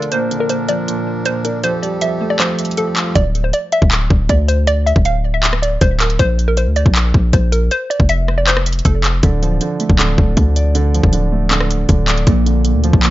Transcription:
Already playing: grand piano D3 F3 A3 D5, accordion D4
0.02 closed hi-hat
0.12 accordion A#2 F3 A#4, grand piano A#2, synth pluck C5, closed hi-hat
0.31 grand piano D3, closed hi-hat
0.40 synth pluck A#4
0.49 grand piano A#2, synth pluck C5, closed hi-hat
0.69 grand piano F3, synth pluck D5, closed hi-hat
0.88 grand piano A#2, closed hi-hat
1.25 grand piano A#2, synth pluck C5, closed hi-hat
1.45 grand piano D4, synth pluck A#4, closed hi-hat
1.64 accordion F2 F3 G4 A4, grand piano F3, synth pluck C5, closed hi-hat
1.83 grand piano G3, synth pluck D5, closed hi-hat
2.01 grand piano F3, synth pluck E5, closed hi-hat
2.21 grand piano A3
2.30 synth pluck D5
2.40 grand piano F3, synth pluck C5, clap, closed hi-hat
2.59 closed hi-hat
2.65 closed hi-hat
2.71 closed hi-hat
2.77 grand piano F3, synth pluck A4, closed hi-hat
2.97 grand piano F4, clap, closed hi-hat
3.15 808-style bass D1, synth pluck D5, kick, closed hi-hat
3.35 closed hi-hat
3.44 synth pluck C5
3.53 synth pluck D5, closed hi-hat
3.72 synth pluck E5, closed hi-hat
3.82 808-style bass D1, kick
3.92 clap, closed hi-hat
4.10 808-style bass D1, kick
4.29 808-style bass D2, synth pluck D5, kick, closed hi-hat
4.48 synth pluck C5, closed hi-hat
4.67 synth pluck D5, closed hi-hat
4.86 synth pluck E5, closed hi-hat
4.96 808-style bass D1, kick
5.05 synth pluck F5, closed hi-hat
5.34 synth pluck E5
5.43 clap, closed hi-hat
5.53 cross-stick
5.62 synth pluck D5, closed hi-hat
5.81 808-style bass D1, synth pluck C5, kick, closed hi-hat
6.00 synth pluck A#4, clap, closed hi-hat
6.10 closed hi-hat
6.19 808-style bass A#1, synth pluck C5, kick, closed hi-hat
6.39 closed hi-hat
6.48 synth pluck A#4
6.57 synth pluck C5, closed hi-hat
6.67 808-style bass D2
6.76 synth pluck D5, closed hi-hat
6.86 808-style bass A#1, kick
6.95 clap, closed hi-hat
7.14 808-style bass A#1, kick
7.33 808-style bass A#1, synth pluck C5, kick, closed hi-hat
7.52 synth pluck A#4, closed hi-hat
7.71 synth pluck C5, closed hi-hat
7.90 synth pluck D5, closed hi-hat
8.00 808-style bass F1, kick
8.09 synth pluck E5, closed hi-hat
8.28 cross-stick
8.38 synth pluck D5
8.47 synth pluck C5, clap, closed hi-hat
8.57 cross-stick
8.66 closed hi-hat
8.73 closed hi-hat
8.79 closed hi-hat
8.85 808-style bass F1, synth pluck A4, kick, closed hi-hat
9.04 clap, closed hi-hat
9.23 808-style bass D1, grand piano D3, kick, closed hi-hat
9.42 grand piano F3, closed hi-hat
9.61 grand piano D3, closed hi-hat
9.80 grand piano A3, closed hi-hat
9.90 808-style bass D1, kick
9.99 grand piano D3, clap, closed hi-hat
10.18 808-style bass D1, kick
10.37 808-style bass D2, grand piano D3, kick, closed hi-hat
10.56 grand piano D5, closed hi-hat
10.75 grand piano D3, closed hi-hat
10.94 grand piano F3, closed hi-hat
11.03 808-style bass D1, kick
11.13 grand piano D3, closed hi-hat
11.32 grand piano A3
11.51 grand piano D3, clap, closed hi-hat
11.60 cross-stick
11.71 closed hi-hat
11.89 808-style bass D1, grand piano D3, kick, closed hi-hat
12.08 grand piano D5, clap, closed hi-hat
12.17 closed hi-hat
12.27 808-style bass A#1, grand piano A#2, kick, closed hi-hat
12.46 grand piano D3, closed hi-hat
12.65 grand piano A#2, closed hi-hat
12.74 808-style bass D2
12.84 grand piano F3, closed hi-hat
12.93 808-style bass A#1, kick
13.03 grand piano A#2, clap, closed hi-hat

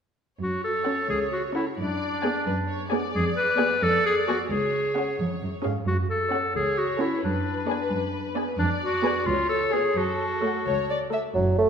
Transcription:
0.40 cello section F#2, clarinet F#4, violin section C#5
0.64 clarinet A4
0.86 viola section C#4 A4, violin section C#5 F#5
1.10 cello section C#2, clarinet G#4
1.32 clarinet F#4
1.55 viola section C#4 A4, clarinet E4, violin section C#5 F#5
1.78 cello section F#2, clarinet D4, violin section D5
2.23 viola section B3 G#4, violin section D5 G#5
2.47 cello section F#2, violin section B4
2.68 violin section C#5
2.90 viola section B3 G#4, violin section D5 G#5
3.14 cello section F2, clarinet G#4
3.37 clarinet B4
3.59 viola section B3 G#4, violin section D5 G#5
3.81 cello section F2, clarinet A4, violin section D5
4.06 clarinet G#4
4.27 viola section B3 G#4, clarinet F#4, violin section D5 G#5
4.50 cello section C#2, clarinet G#4, violin section C#5
4.96 viola section C#4 G#4, violin section C#5 F#5
5.19 cello section F2
5.41 cello section F#2
5.64 cello section G#2, viola section C#4 G#4, violin section C#5 F5
5.87 cello section F#2, clarinet F#4
6.10 clarinet A4
6.33 viola section C#4 A4, violin section C#5 F#5
6.55 cello section C#2, clarinet G#4, violin section C#5
6.78 clarinet F#4
7.00 viola section C#4 A4, clarinet E4, violin section C#5 F#5
7.24 cello section F#2, clarinet D4, violin section B4
7.68 viola section B3 G#4, violin section D5 G#5
7.91 cello section F#2
8.36 viola section B3 G#4, violin section D5 G#5
8.59 cello section F2, clarinet D4, violin section D5
8.82 clarinet F#4
9.04 viola section B3 G#4, violin section B4 G#5
9.27 cello section C#2, clarinet F4, violin section C#5
9.49 clarinet A4
9.73 viola section B3 G#4, clarinet G#4, violin section C#5 G#5
9.96 cello section F#2, clarinet F#4, violin section A4
10.42 viola section A3 A4, violin section C#5 F#5
10.66 cello section C#2, violin section C#5
10.90 violin section D5
11.12 viola section A3 A4, violin section E5
11.34 double bass section F#1, cello section F#2, bassoon F#3
11.58 bassoon A3

